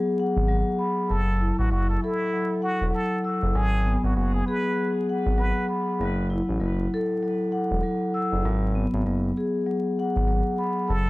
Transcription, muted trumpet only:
1.09 1.55 A4 medium
1.59 1.70 F#4 medium
1.71 1.88 F#4 medium
1.90 2.01 A4 medium
2.03 2.60 E4 medium
2.63 2.91 F#4 medium
2.94 3.21 A4 medium
3.55 4.01 G#4 loud
4.05 4.15 F#4 medium
4.16 4.33 F#4 medium
4.34 4.45 G#4 medium
4.46 4.92 B4 medium
5.38 5.66 B4 medium
10.89 11.10 A4 medium

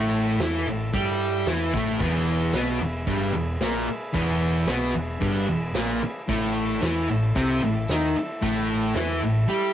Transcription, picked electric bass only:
0.00 0.36 A1 loud
0.39 0.64 E2 medium
0.66 0.91 A1 medium
0.94 1.43 G2 medium
1.47 1.71 E2 loud
1.73 1.98 A1 medium
2.00 2.50 E1 loud
2.53 2.78 B1 medium
2.80 3.05 E1 medium
3.07 3.32 G1 loud
3.35 3.59 E1 medium
3.60 3.85 A#1 loud
3.88 muted picked electric bass stroke soft
4.15 4.64 E1 loud
4.67 4.92 B1 medium
4.95 5.20 E1 medium
5.22 5.46 G1 medium
5.50 5.74 E1 medium
5.75 6.00 A#1 loud
6.02 muted picked electric bass stroke soft
6.29 6.78 A1 loud
6.82 7.07 E2 loud
7.08 7.33 A1 medium
7.36 7.60 C2 loud
7.62 7.87 A1 medium
7.89 8.13 D#2 loud
8.43 8.92 A1 loud
8.96 9.20 E2 loud
9.22 9.47 A1 medium

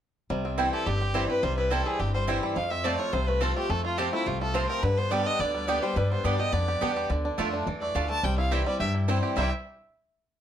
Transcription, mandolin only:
0.58 0.67 C4 medium
0.58 0.67 E4 medium
0.58 0.68 C5 medium
0.58 0.68 G5 loud
1.14 1.24 C4 medium
1.14 1.24 E4 medium
1.14 1.24 C5 loud
1.14 1.24 G5 loud
1.71 1.80 C4 loud
1.71 1.81 E4 medium
1.71 1.81 C5 medium
1.71 1.81 G5 loud
2.27 2.37 C4 medium
2.27 2.37 E4 medium
2.27 2.37 C5 medium
2.27 2.37 G5 medium
2.84 2.94 C4 medium
2.84 2.94 F4 medium
2.84 2.94 C5 medium
2.84 2.94 A5 loud
3.41 3.50 C4 medium
3.41 3.51 F4 medium
3.41 3.51 C5 loud
3.41 3.51 A5 medium
3.98 4.07 C4 medium
3.98 4.07 F4 medium
3.98 4.08 C5 medium
3.98 4.08 A5 loud
4.54 4.64 C4 medium
4.54 4.64 F4 medium
4.54 4.64 C5 medium
4.54 4.64 A5 loud
5.11 5.21 B3 medium
5.11 5.21 G4 medium
5.11 5.21 D5 medium
5.11 5.21 G5 medium
5.68 5.77 B3 medium
5.68 5.78 G4 medium
5.68 5.78 D5 loud
5.68 5.78 G5 loud
6.24 6.34 B3 medium
6.24 6.34 G4 medium
6.24 6.34 D5 loud
6.24 6.35 G5 loud
6.81 6.91 B3 medium
6.81 6.91 G4 medium
6.81 6.91 D5 medium
6.81 6.91 G5 loud
7.38 7.48 A3 medium
7.38 7.48 F4 medium
7.38 7.48 D5 medium
7.38 7.48 A5 loud
7.95 8.04 A3 medium
7.95 8.04 F4 medium
7.95 8.05 D5 medium
7.95 8.05 A5 loud
8.51 8.61 C4 medium
8.51 8.61 E4 medium
8.51 8.61 C5 medium
8.51 8.61 G5 medium
9.08 9.18 C4 medium
9.08 9.18 E4 medium
9.08 9.18 C5 loud
9.08 9.18 G5 loud
9.36 9.48 C4 medium
9.36 9.48 E4 medium
9.36 9.49 C5 medium
9.36 9.49 G5 medium

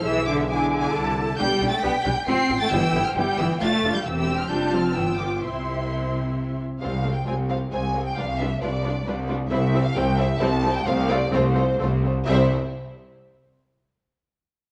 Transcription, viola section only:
0.06 0.49 E4 medium
0.06 0.49 G#4 medium
0.50 0.93 E4 medium
0.50 0.94 G#4 medium
0.94 1.38 E4 medium
0.94 1.38 A4 medium
1.38 1.47 D4 medium
1.38 1.46 G4 medium
1.61 1.69 D4 medium
1.61 1.69 G4 medium
1.82 1.91 D4 medium
1.82 1.91 G4 medium
2.04 2.12 D4 medium
2.04 2.12 G4 medium
2.26 2.35 C4 medium
2.26 2.34 F4 medium
2.50 2.58 C4 medium
2.50 2.58 F4 medium
2.72 2.81 B3 medium
2.72 2.80 E4 medium
2.94 3.02 B3 medium
2.94 3.03 E4 medium
3.17 3.25 B3 medium
3.17 3.25 E4 medium
3.39 3.47 B3 medium
3.39 3.47 E4 medium
3.61 3.69 D4 medium
3.61 3.70 F4 medium
3.84 3.93 D4 medium
3.84 3.92 F4 medium
4.06 4.47 C4 medium
4.06 4.47 G4 medium
4.50 4.72 D4 medium
4.50 4.94 F4 medium
4.74 4.96 C4 medium
4.96 5.42 B3 medium
4.96 5.41 F4 medium
5.42 6.62 C4 medium
5.42 6.62 E4 medium
6.82 6.90 G#3 medium
6.82 6.90 C4 medium
7.04 7.12 G#3 medium
7.04 7.12 C4 medium
7.27 7.35 G#3 medium
7.27 7.35 C4 medium
7.49 7.57 G#3 medium
7.49 7.57 C4 medium
7.71 7.79 G#3 medium
7.71 7.80 C4 medium
7.94 8.02 G#3 medium
7.94 8.02 C4 medium
8.17 8.25 G3 medium
8.17 8.26 D4 medium
8.40 8.49 G3 medium
8.40 8.48 D4 medium
8.63 8.71 G3 medium
8.63 8.71 D4 medium
8.85 8.94 G3 medium
8.85 8.93 D4 medium
9.07 9.16 G3 medium
9.07 9.15 D4 medium
9.29 9.37 G3 medium
9.29 9.37 D4 medium
9.51 9.59 G3 medium
9.51 9.59 C4 medium
9.74 9.82 G3 medium
9.74 9.82 C4 medium
9.96 10.04 G3 medium
9.96 10.04 C4 medium
10.18 10.26 G3 medium
10.18 10.26 C4 medium
10.40 10.48 G3 medium
10.40 10.48 C4 loud
10.64 10.72 G3 medium
10.64 10.72 C4 medium
10.86 10.94 A3 medium
10.86 10.94 C4 medium
11.09 11.17 A3 loud
11.09 11.17 C4 loud
11.32 11.40 A3 medium
11.32 11.40 C4 loud
11.55 11.63 A3 medium
11.55 11.63 C4 medium
11.79 11.87 A3 medium
11.79 11.87 C4 medium
12.02 12.10 A3 medium
12.02 12.10 C4 medium
12.27 12.54 G3 medium
12.27 12.54 C4 medium

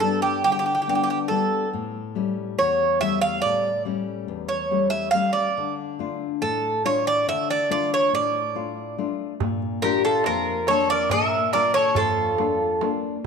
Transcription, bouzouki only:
0.00 0.20 A4 medium
0.22 0.43 G4 medium
0.44 0.51 G4 medium
0.52 0.58 G4 soft
0.59 0.65 G4 medium
0.66 0.73 G4 soft
0.75 0.81 G4 soft
0.82 0.88 G4 soft
0.89 0.94 G4 soft
0.95 1.02 G4 soft
1.03 1.09 G4 medium
1.10 1.18 G4 soft
1.28 1.68 A4 medium
2.59 3.00 C#5 medium
3.01 3.20 E5 loud
3.21 3.41 F5 medium
3.42 3.82 D5 medium
4.48 4.89 C#5 medium
4.90 5.11 E5 medium
5.11 5.32 F5 medium
5.33 5.73 D5 medium
6.42 6.81 A4 medium
6.86 7.07 C#5 medium
7.07 7.28 D5 medium
7.29 7.48 E5 medium
7.50 7.70 D5 medium
7.71 7.90 D5 medium
7.94 8.14 C#5 medium
8.15 9.06 D5 medium
9.82 10.03 A#4 medium
10.05 10.26 A4 medium
10.26 10.70 A#4 medium
10.68 10.90 C#5 medium
10.90 11.10 D5 medium
11.11 11.51 E5 loud
11.53 11.74 D5 medium
11.74 11.97 C#5 medium
11.96 12.88 A4 medium

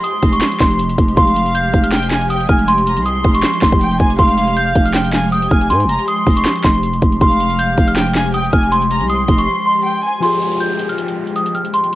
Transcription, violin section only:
0.04 0.75 C6 medium
1.17 1.88 F5 loud
1.92 2.10 G5 medium
2.11 2.29 G#5 medium
2.30 2.48 G5 medium
2.49 2.67 G#5 medium
2.87 3.05 A#5 medium
3.06 3.77 C6 medium
3.81 3.99 G5 medium
4.00 4.18 G#5 medium
4.19 4.90 F5 loud
4.94 5.12 G5 medium
5.13 5.31 G#5 medium
5.32 5.50 G5 medium
5.51 5.69 G#5 medium
5.89 6.07 A#5 medium
6.08 6.79 C6 medium
7.21 7.92 F5 loud
7.96 8.14 G5 medium
8.15 8.33 G#5 medium
8.34 8.52 G5 medium
8.53 8.71 G#5 medium
8.91 9.09 A#5 medium
9.09 9.81 C6 medium
9.85 10.03 G5 medium
10.04 10.22 G#5 medium

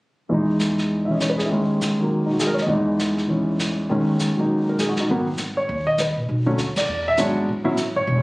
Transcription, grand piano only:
0.29 1.49 E2 soft
0.29 1.06 E3 soft
0.29 1.50 G#3 soft
0.34 1.52 D#4 soft
1.05 1.50 E3 soft
1.05 1.15 E5 soft
1.10 1.51 C#4 soft
1.10 1.24 D#5 soft
1.22 1.33 C#5 soft
1.30 1.40 B4 soft
1.38 1.46 G#4 soft
1.46 2.69 D#2 soft
1.46 1.55 E4 medium
1.51 1.98 D#3 soft
1.51 2.68 G#3 soft
1.51 2.71 C#4 soft
2.00 2.70 D#3 soft
2.00 2.71 F#3 soft
2.00 2.71 A#3 soft
2.26 2.35 D#4 soft
2.31 2.42 F#4 soft
2.40 2.52 G#4 soft
2.47 2.59 A#4 medium
2.54 2.64 C#5 soft
2.61 2.72 D#5 soft
2.66 3.88 E2 soft
2.66 3.26 E3 soft
2.66 3.89 G#3 soft
2.71 3.90 D#4 soft
3.28 3.89 E3 soft
3.28 3.90 C#4 soft
3.89 5.09 D#2 soft
3.89 5.08 D#3 soft
3.89 5.09 G#3 soft
3.89 5.10 C#4 medium
4.37 5.08 F#3 soft
4.37 5.09 A#3 soft
4.37 4.99 D#4 soft
4.69 4.84 A#4 soft
4.79 4.96 G#4 soft
4.89 5.04 F#4 soft
5.00 5.14 D#4 soft
5.10 5.26 D#3 soft
5.10 5.25 F#3 soft
5.10 5.26 A#3 medium
5.10 5.26 B3 medium
5.57 5.85 C#5 medium
5.87 5.98 D#5 medium
6.00 6.17 B4 soft
6.46 6.57 D3 medium
6.46 6.57 F#3 medium
6.46 6.57 A3 medium
6.46 6.57 C#4 medium
6.77 7.05 D5 medium
7.08 7.19 E5 medium
7.17 7.48 F#3 medium
7.17 7.48 G#3 soft
7.17 7.48 B3 soft
7.17 7.48 D4 medium
7.17 7.37 C#5 medium
7.64 7.76 F#3 medium
7.64 7.76 B3 medium
7.64 7.76 C#4 medium
7.64 7.76 E4 medium
7.96 8.22 C#5 medium

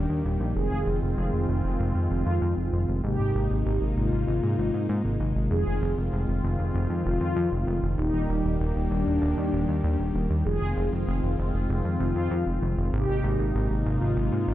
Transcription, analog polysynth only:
0.00 0.44 D4 loud
0.56 1.00 G#4 loud
2.11 2.91 F4 loud
3.03 3.84 G4 loud
3.96 5.38 F4 loud
5.51 5.95 G#4 loud
7.06 7.86 F4 loud
7.98 8.79 D#4 loud
8.91 10.33 D4 loud
10.46 10.90 G#4 loud
12.01 12.81 F4 loud
12.93 13.74 G4 loud
13.86 14.54 F4 loud

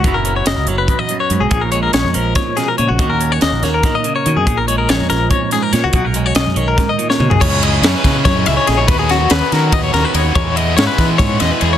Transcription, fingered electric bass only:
0.04 0.44 F#1 medium
0.46 0.56 F#1 medium
0.56 0.66 C#2 medium
0.66 0.87 F#1 medium
1.30 1.40 F#2 medium
1.41 1.50 B1 medium
1.51 1.91 A#1 medium
1.94 2.04 A#1 medium
2.04 2.14 F2 medium
2.16 2.35 A#1 medium
2.79 2.89 A#2 medium
2.90 2.99 A#1 medium
2.99 3.38 D#2 medium
3.43 3.51 D#2 medium
3.52 3.62 A#1 medium
3.62 3.82 D#2 medium
4.26 4.36 D#3 medium
4.36 4.46 F#2 medium
4.46 4.86 A#1 medium
4.90 4.99 A#1 medium
5.00 5.10 F2 medium
5.11 5.30 A#1 medium
5.73 5.83 A#2 medium
5.84 5.93 C#2 medium
5.94 6.33 B1 medium
6.36 6.46 B1 medium
6.46 6.56 F#2 medium
6.56 6.77 B1 medium
7.20 7.29 B2 medium
7.30 7.40 C2 medium
7.41 7.81 C#2 loud
7.82 7.93 F#2 medium
8.04 8.24 C#3 medium
8.26 8.45 F#2 loud
8.47 8.57 C#2 medium
8.68 8.88 A#1 medium
8.88 9.27 D#2 loud
9.31 9.41 D#2 medium
9.52 9.71 D#3 medium
9.73 9.92 D#2 medium
9.94 10.04 D#2 medium
10.14 10.34 D#2 medium
10.35 10.74 E2 loud
10.77 10.87 G#2 loud
10.98 11.18 E3 medium
11.19 11.39 G#2 loud
11.41 11.50 E2 medium
11.62 11.78 E2 medium

